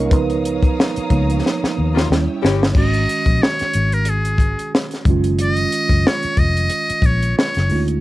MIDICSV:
0, 0, Header, 1, 8, 480
1, 0, Start_track
1, 0, Tempo, 659341
1, 80, Time_signature, 4, 2, 24, 8
1, 5828, End_track
2, 0, Start_track
2, 0, Title_t, "String section"
2, 0, Program_c, 0, 48
2, 86, Note_on_c, 0, 73, 76
2, 87, Note_on_c, 0, 82, 75
2, 89, Note_on_c, 0, 87, 90
2, 91, Note_on_c, 0, 77, 72
2, 1505, Note_off_c, 0, 73, 0
2, 1509, Note_off_c, 0, 82, 0
2, 1511, Note_off_c, 0, 77, 0
2, 1514, Note_on_c, 0, 73, 74
2, 1516, Note_on_c, 0, 79, 60
2, 1517, Note_on_c, 0, 76, 60
2, 1985, Note_off_c, 0, 87, 0
2, 1992, Note_off_c, 0, 73, 0
2, 1993, Note_off_c, 0, 79, 0
2, 1994, Note_off_c, 0, 76, 0
2, 5828, End_track
3, 0, Start_track
3, 0, Title_t, "Muted trumpet"
3, 0, Program_c, 1, 59
3, 2023, Note_on_c, 1, 75, 96
3, 2491, Note_on_c, 1, 73, 91
3, 2502, Note_off_c, 1, 75, 0
3, 2866, Note_on_c, 1, 70, 79
3, 2877, Note_off_c, 1, 73, 0
3, 2981, Note_on_c, 1, 68, 71
3, 2992, Note_off_c, 1, 70, 0
3, 3451, Note_off_c, 1, 68, 0
3, 3949, Note_on_c, 1, 75, 111
3, 4423, Note_on_c, 1, 73, 95
3, 4434, Note_off_c, 1, 75, 0
3, 4655, Note_on_c, 1, 75, 105
3, 4666, Note_off_c, 1, 73, 0
3, 5139, Note_on_c, 1, 73, 88
3, 5150, Note_off_c, 1, 75, 0
3, 5366, Note_off_c, 1, 73, 0
3, 5371, Note_on_c, 1, 73, 93
3, 5713, Note_off_c, 1, 73, 0
3, 5828, End_track
4, 0, Start_track
4, 0, Title_t, "Tine electric piano"
4, 0, Program_c, 2, 4
4, 0, Control_c, 2, 64, 127
4, 0, Note_on_c, 2, 58, 67
4, 0, Note_on_c, 2, 61, 67
4, 0, Note_on_c, 2, 63, 79
4, 0, Note_on_c, 2, 70, 81
4, 0, Note_on_c, 2, 73, 93
4, 0, Note_on_c, 2, 75, 95
4, 73, Note_on_c, 2, 71, 80
4, 77, Note_off_c, 2, 70, 0
4, 80, Note_off_c, 2, 58, 0
4, 88, Note_on_c, 2, 53, 56
4, 89, Note_on_c, 2, 70, 51
4, 91, Control_c, 2, 64, 0
4, 94, Note_off_c, 2, 61, 0
4, 94, Note_off_c, 2, 73, 0
4, 94, Note_on_c, 2, 59, 63
4, 95, Note_off_c, 2, 63, 0
4, 95, Note_off_c, 2, 75, 0
4, 97, Note_on_c, 2, 63, 59
4, 221, Control_c, 2, 64, 127
4, 413, Note_off_c, 2, 53, 0
4, 414, Note_off_c, 2, 70, 0
4, 418, Note_off_c, 2, 63, 0
4, 527, Note_off_c, 2, 71, 0
4, 541, Note_off_c, 2, 59, 0
4, 810, Note_on_c, 2, 53, 51
4, 812, Note_on_c, 2, 58, 48
4, 816, Note_on_c, 2, 59, 49
4, 816, Note_on_c, 2, 63, 56
4, 1022, Note_off_c, 2, 53, 0
4, 1023, Note_off_c, 2, 58, 0
4, 1025, Note_off_c, 2, 59, 0
4, 1025, Note_off_c, 2, 63, 0
4, 1530, Control_c, 2, 64, 0
4, 1532, Note_on_c, 2, 55, 57
4, 1534, Note_on_c, 2, 61, 56
4, 1538, Note_on_c, 2, 64, 63
4, 1667, Control_c, 2, 64, 127
4, 1982, Note_off_c, 2, 55, 0
4, 1983, Note_off_c, 2, 61, 0
4, 1986, Note_off_c, 2, 64, 0
4, 1995, Note_on_c, 2, 51, 58
4, 2003, Note_on_c, 2, 56, 56
4, 2009, Control_c, 2, 64, 0
4, 2018, Note_on_c, 2, 61, 54
4, 2025, Note_on_c, 2, 66, 63
4, 2123, Control_c, 2, 64, 127
4, 3649, Note_off_c, 2, 51, 0
4, 3653, Note_off_c, 2, 56, 0
4, 3660, Note_off_c, 2, 61, 0
4, 3664, Note_off_c, 2, 66, 0
4, 3681, Note_on_c, 2, 51, 65
4, 3688, Control_c, 2, 64, 0
4, 3693, Note_on_c, 2, 56, 75
4, 3702, Note_on_c, 2, 61, 73
4, 3713, Note_on_c, 2, 65, 80
4, 3807, Control_c, 2, 64, 127
4, 5571, Note_off_c, 2, 51, 0
4, 5578, Note_off_c, 2, 56, 0
4, 5582, Note_off_c, 2, 61, 0
4, 5587, Note_off_c, 2, 65, 0
4, 5602, Note_on_c, 2, 63, 48
4, 5606, Note_on_c, 2, 56, 43
4, 5612, Note_on_c, 2, 61, 44
4, 5620, Note_on_c, 2, 65, 57
4, 5828, Note_off_c, 2, 56, 0
4, 5828, Note_off_c, 2, 61, 0
4, 5828, Note_off_c, 2, 63, 0
4, 5828, Note_off_c, 2, 65, 0
4, 5828, End_track
5, 0, Start_track
5, 0, Title_t, "Saxophone section"
5, 0, Program_c, 3, 65
5, 1410, Note_on_c, 3, 58, 63
5, 1411, Note_on_c, 3, 47, 66
5, 1412, Note_on_c, 3, 65, 74
5, 1502, Note_off_c, 3, 58, 0
5, 1503, Note_off_c, 3, 47, 0
5, 1503, Note_off_c, 3, 65, 0
5, 1760, Note_on_c, 3, 67, 77
5, 1761, Note_on_c, 3, 52, 68
5, 1762, Note_on_c, 3, 61, 79
5, 1913, Note_off_c, 3, 67, 0
5, 1914, Note_off_c, 3, 52, 0
5, 1914, Note_off_c, 3, 61, 0
5, 5828, End_track
6, 0, Start_track
6, 0, Title_t, "Fingered electric bass"
6, 0, Program_c, 4, 33
6, 0, Note_on_c, 4, 36, 93
6, 89, Note_off_c, 4, 36, 0
6, 89, Note_on_c, 4, 37, 109
6, 515, Note_off_c, 4, 37, 0
6, 811, Note_on_c, 4, 37, 94
6, 1021, Note_off_c, 4, 37, 0
6, 1298, Note_on_c, 4, 39, 82
6, 1505, Note_off_c, 4, 39, 0
6, 1531, Note_on_c, 4, 39, 93
6, 1645, Note_off_c, 4, 39, 0
6, 1776, Note_on_c, 4, 31, 90
6, 1984, Note_off_c, 4, 31, 0
6, 2010, Note_on_c, 4, 32, 106
6, 2220, Note_off_c, 4, 32, 0
6, 2379, Note_on_c, 4, 34, 85
6, 2472, Note_off_c, 4, 34, 0
6, 2730, Note_on_c, 4, 32, 88
6, 3309, Note_off_c, 4, 32, 0
6, 3686, Note_on_c, 4, 30, 95
6, 4113, Note_off_c, 4, 30, 0
6, 4300, Note_on_c, 4, 30, 94
6, 4393, Note_off_c, 4, 30, 0
6, 4646, Note_on_c, 4, 29, 94
6, 4858, Note_off_c, 4, 29, 0
6, 5118, Note_on_c, 4, 34, 87
6, 5334, Note_off_c, 4, 34, 0
6, 5509, Note_on_c, 4, 30, 87
6, 5598, Note_off_c, 4, 30, 0
6, 5613, Note_on_c, 4, 38, 90
6, 5822, Note_off_c, 4, 38, 0
6, 5828, End_track
7, 0, Start_track
7, 0, Title_t, "Muted fingered electric bass strokes"
7, 709, Note_on_c, 9, 29, 44
7, 782, Note_off_c, 9, 29, 0
7, 1190, Note_on_c, 9, 29, 47
7, 1262, Note_off_c, 9, 29, 0
7, 2632, Note_on_c, 9, 29, 38
7, 2705, Note_off_c, 9, 29, 0
7, 4546, Note_on_c, 9, 29, 45
7, 4619, Note_off_c, 9, 29, 0
7, 5024, Note_on_c, 9, 29, 45
7, 5097, Note_off_c, 9, 29, 0
7, 5828, End_track
8, 0, Start_track
8, 0, Title_t, "Drums"
8, 82, Note_on_c, 9, 36, 119
8, 82, Note_on_c, 9, 42, 95
8, 154, Note_off_c, 9, 36, 0
8, 155, Note_off_c, 9, 42, 0
8, 217, Note_on_c, 9, 42, 42
8, 289, Note_off_c, 9, 42, 0
8, 330, Note_on_c, 9, 42, 63
8, 403, Note_off_c, 9, 42, 0
8, 455, Note_on_c, 9, 36, 94
8, 458, Note_on_c, 9, 42, 49
8, 528, Note_off_c, 9, 36, 0
8, 531, Note_off_c, 9, 42, 0
8, 582, Note_on_c, 9, 38, 103
8, 655, Note_off_c, 9, 38, 0
8, 700, Note_on_c, 9, 42, 52
8, 773, Note_off_c, 9, 42, 0
8, 803, Note_on_c, 9, 36, 88
8, 803, Note_on_c, 9, 42, 64
8, 875, Note_off_c, 9, 36, 0
8, 876, Note_off_c, 9, 42, 0
8, 945, Note_on_c, 9, 42, 50
8, 1018, Note_off_c, 9, 42, 0
8, 1064, Note_on_c, 9, 38, 61
8, 1137, Note_off_c, 9, 38, 0
8, 1194, Note_on_c, 9, 38, 61
8, 1266, Note_off_c, 9, 38, 0
8, 1436, Note_on_c, 9, 38, 73
8, 1509, Note_off_c, 9, 38, 0
8, 1544, Note_on_c, 9, 38, 84
8, 1616, Note_off_c, 9, 38, 0
8, 1781, Note_on_c, 9, 38, 99
8, 1854, Note_off_c, 9, 38, 0
8, 1914, Note_on_c, 9, 38, 102
8, 1987, Note_off_c, 9, 38, 0
8, 2001, Note_on_c, 9, 36, 116
8, 2002, Note_on_c, 9, 49, 88
8, 2073, Note_off_c, 9, 36, 0
8, 2075, Note_off_c, 9, 49, 0
8, 2138, Note_on_c, 9, 42, 45
8, 2210, Note_off_c, 9, 42, 0
8, 2251, Note_on_c, 9, 42, 64
8, 2323, Note_off_c, 9, 42, 0
8, 2372, Note_on_c, 9, 36, 92
8, 2374, Note_on_c, 9, 42, 45
8, 2445, Note_off_c, 9, 36, 0
8, 2447, Note_off_c, 9, 42, 0
8, 2498, Note_on_c, 9, 38, 102
8, 2571, Note_off_c, 9, 38, 0
8, 2614, Note_on_c, 9, 42, 47
8, 2629, Note_on_c, 9, 38, 33
8, 2687, Note_off_c, 9, 42, 0
8, 2702, Note_off_c, 9, 38, 0
8, 2719, Note_on_c, 9, 42, 69
8, 2792, Note_off_c, 9, 42, 0
8, 2856, Note_on_c, 9, 42, 43
8, 2928, Note_off_c, 9, 42, 0
8, 2950, Note_on_c, 9, 42, 95
8, 3023, Note_off_c, 9, 42, 0
8, 3093, Note_on_c, 9, 42, 49
8, 3166, Note_off_c, 9, 42, 0
8, 3189, Note_on_c, 9, 36, 87
8, 3199, Note_on_c, 9, 42, 74
8, 3262, Note_off_c, 9, 36, 0
8, 3272, Note_off_c, 9, 42, 0
8, 3341, Note_on_c, 9, 42, 43
8, 3414, Note_off_c, 9, 42, 0
8, 3456, Note_on_c, 9, 38, 102
8, 3529, Note_off_c, 9, 38, 0
8, 3574, Note_on_c, 9, 42, 41
8, 3594, Note_on_c, 9, 38, 37
8, 3647, Note_off_c, 9, 42, 0
8, 3667, Note_off_c, 9, 38, 0
8, 3679, Note_on_c, 9, 36, 111
8, 3681, Note_on_c, 9, 42, 65
8, 3752, Note_off_c, 9, 36, 0
8, 3754, Note_off_c, 9, 42, 0
8, 3814, Note_on_c, 9, 42, 53
8, 3887, Note_off_c, 9, 42, 0
8, 3921, Note_on_c, 9, 42, 91
8, 3994, Note_off_c, 9, 42, 0
8, 4051, Note_on_c, 9, 42, 43
8, 4124, Note_off_c, 9, 42, 0
8, 4166, Note_on_c, 9, 42, 67
8, 4239, Note_off_c, 9, 42, 0
8, 4291, Note_on_c, 9, 36, 83
8, 4293, Note_on_c, 9, 42, 47
8, 4363, Note_off_c, 9, 36, 0
8, 4366, Note_off_c, 9, 42, 0
8, 4418, Note_on_c, 9, 38, 107
8, 4490, Note_off_c, 9, 38, 0
8, 4534, Note_on_c, 9, 42, 49
8, 4606, Note_off_c, 9, 42, 0
8, 4638, Note_on_c, 9, 42, 60
8, 4639, Note_on_c, 9, 36, 91
8, 4710, Note_off_c, 9, 42, 0
8, 4712, Note_off_c, 9, 36, 0
8, 4782, Note_on_c, 9, 42, 48
8, 4854, Note_off_c, 9, 42, 0
8, 4875, Note_on_c, 9, 42, 87
8, 4947, Note_off_c, 9, 42, 0
8, 5020, Note_on_c, 9, 42, 51
8, 5093, Note_off_c, 9, 42, 0
8, 5110, Note_on_c, 9, 36, 96
8, 5122, Note_on_c, 9, 42, 69
8, 5183, Note_off_c, 9, 36, 0
8, 5195, Note_off_c, 9, 42, 0
8, 5260, Note_on_c, 9, 42, 43
8, 5333, Note_off_c, 9, 42, 0
8, 5377, Note_on_c, 9, 38, 101
8, 5450, Note_off_c, 9, 38, 0
8, 5492, Note_on_c, 9, 42, 36
8, 5512, Note_on_c, 9, 38, 35
8, 5565, Note_off_c, 9, 42, 0
8, 5585, Note_off_c, 9, 38, 0
8, 5602, Note_on_c, 9, 46, 47
8, 5675, Note_off_c, 9, 46, 0
8, 5736, Note_on_c, 9, 42, 53
8, 5809, Note_off_c, 9, 42, 0
8, 5828, End_track
0, 0, End_of_file